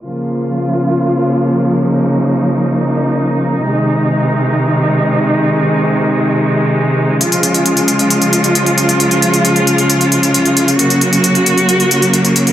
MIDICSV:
0, 0, Header, 1, 3, 480
1, 0, Start_track
1, 0, Key_signature, -5, "minor"
1, 0, Tempo, 447761
1, 47, Time_signature, 4, 2, 24, 8
1, 13428, End_track
2, 0, Start_track
2, 0, Title_t, "String section"
2, 0, Program_c, 0, 48
2, 47, Note_on_c, 0, 58, 64
2, 47, Note_on_c, 0, 65, 78
2, 48, Note_on_c, 0, 49, 69
2, 48, Note_on_c, 0, 53, 68
2, 1948, Note_off_c, 0, 65, 0
2, 1967, Note_on_c, 0, 63, 82
2, 3849, Note_off_c, 0, 49, 0
2, 3849, Note_off_c, 0, 53, 0
2, 3849, Note_off_c, 0, 58, 0
2, 3886, Note_on_c, 0, 48, 72
2, 3887, Note_on_c, 0, 51, 68
2, 3888, Note_on_c, 0, 56, 68
2, 7685, Note_off_c, 0, 63, 0
2, 7688, Note_off_c, 0, 48, 0
2, 7689, Note_off_c, 0, 51, 0
2, 7727, Note_on_c, 0, 49, 71
2, 7727, Note_on_c, 0, 53, 67
2, 7727, Note_on_c, 0, 65, 83
2, 11525, Note_off_c, 0, 56, 0
2, 11529, Note_off_c, 0, 53, 0
2, 11529, Note_off_c, 0, 65, 0
2, 11566, Note_on_c, 0, 54, 71
2, 11567, Note_on_c, 0, 66, 84
2, 11568, Note_on_c, 0, 58, 69
2, 13428, Note_off_c, 0, 49, 0
2, 13428, Note_off_c, 0, 54, 0
2, 13428, Note_off_c, 0, 58, 0
2, 13428, Note_off_c, 0, 66, 0
2, 13428, End_track
3, 0, Start_track
3, 0, Title_t, "Drums"
3, 7728, Note_on_c, 9, 42, 66
3, 7835, Note_off_c, 9, 42, 0
3, 7848, Note_on_c, 9, 42, 46
3, 7955, Note_off_c, 9, 42, 0
3, 7967, Note_on_c, 9, 42, 70
3, 8074, Note_off_c, 9, 42, 0
3, 8087, Note_on_c, 9, 42, 46
3, 8194, Note_off_c, 9, 42, 0
3, 8208, Note_on_c, 9, 42, 71
3, 8315, Note_off_c, 9, 42, 0
3, 8328, Note_on_c, 9, 42, 45
3, 8435, Note_off_c, 9, 42, 0
3, 8447, Note_on_c, 9, 42, 67
3, 8554, Note_off_c, 9, 42, 0
3, 8568, Note_on_c, 9, 42, 44
3, 8675, Note_off_c, 9, 42, 0
3, 8688, Note_on_c, 9, 42, 71
3, 8795, Note_off_c, 9, 42, 0
3, 8807, Note_on_c, 9, 42, 44
3, 8915, Note_off_c, 9, 42, 0
3, 8928, Note_on_c, 9, 42, 67
3, 9035, Note_off_c, 9, 42, 0
3, 9048, Note_on_c, 9, 42, 45
3, 9155, Note_off_c, 9, 42, 0
3, 9168, Note_on_c, 9, 42, 69
3, 9275, Note_off_c, 9, 42, 0
3, 9288, Note_on_c, 9, 42, 45
3, 9396, Note_off_c, 9, 42, 0
3, 9409, Note_on_c, 9, 42, 68
3, 9516, Note_off_c, 9, 42, 0
3, 9529, Note_on_c, 9, 42, 48
3, 9636, Note_off_c, 9, 42, 0
3, 9648, Note_on_c, 9, 42, 65
3, 9755, Note_off_c, 9, 42, 0
3, 9768, Note_on_c, 9, 42, 48
3, 9875, Note_off_c, 9, 42, 0
3, 9887, Note_on_c, 9, 42, 70
3, 9995, Note_off_c, 9, 42, 0
3, 10008, Note_on_c, 9, 42, 48
3, 10115, Note_off_c, 9, 42, 0
3, 10127, Note_on_c, 9, 42, 71
3, 10234, Note_off_c, 9, 42, 0
3, 10248, Note_on_c, 9, 42, 43
3, 10355, Note_off_c, 9, 42, 0
3, 10368, Note_on_c, 9, 42, 65
3, 10476, Note_off_c, 9, 42, 0
3, 10488, Note_on_c, 9, 42, 48
3, 10595, Note_off_c, 9, 42, 0
3, 10608, Note_on_c, 9, 42, 69
3, 10715, Note_off_c, 9, 42, 0
3, 10728, Note_on_c, 9, 42, 45
3, 10836, Note_off_c, 9, 42, 0
3, 10848, Note_on_c, 9, 42, 72
3, 10955, Note_off_c, 9, 42, 0
3, 10968, Note_on_c, 9, 42, 48
3, 11075, Note_off_c, 9, 42, 0
3, 11088, Note_on_c, 9, 42, 74
3, 11196, Note_off_c, 9, 42, 0
3, 11208, Note_on_c, 9, 42, 46
3, 11315, Note_off_c, 9, 42, 0
3, 11328, Note_on_c, 9, 42, 71
3, 11435, Note_off_c, 9, 42, 0
3, 11449, Note_on_c, 9, 42, 48
3, 11557, Note_off_c, 9, 42, 0
3, 11568, Note_on_c, 9, 42, 73
3, 11675, Note_off_c, 9, 42, 0
3, 11688, Note_on_c, 9, 42, 52
3, 11795, Note_off_c, 9, 42, 0
3, 11807, Note_on_c, 9, 42, 71
3, 11914, Note_off_c, 9, 42, 0
3, 11928, Note_on_c, 9, 42, 50
3, 12035, Note_off_c, 9, 42, 0
3, 12048, Note_on_c, 9, 42, 74
3, 12155, Note_off_c, 9, 42, 0
3, 12169, Note_on_c, 9, 42, 48
3, 12276, Note_off_c, 9, 42, 0
3, 12288, Note_on_c, 9, 42, 71
3, 12396, Note_off_c, 9, 42, 0
3, 12409, Note_on_c, 9, 42, 51
3, 12516, Note_off_c, 9, 42, 0
3, 12529, Note_on_c, 9, 42, 72
3, 12636, Note_off_c, 9, 42, 0
3, 12649, Note_on_c, 9, 42, 46
3, 12756, Note_off_c, 9, 42, 0
3, 12769, Note_on_c, 9, 42, 74
3, 12876, Note_off_c, 9, 42, 0
3, 12889, Note_on_c, 9, 42, 47
3, 12996, Note_off_c, 9, 42, 0
3, 13009, Note_on_c, 9, 42, 75
3, 13116, Note_off_c, 9, 42, 0
3, 13128, Note_on_c, 9, 42, 49
3, 13235, Note_off_c, 9, 42, 0
3, 13248, Note_on_c, 9, 42, 72
3, 13355, Note_off_c, 9, 42, 0
3, 13368, Note_on_c, 9, 42, 46
3, 13428, Note_off_c, 9, 42, 0
3, 13428, End_track
0, 0, End_of_file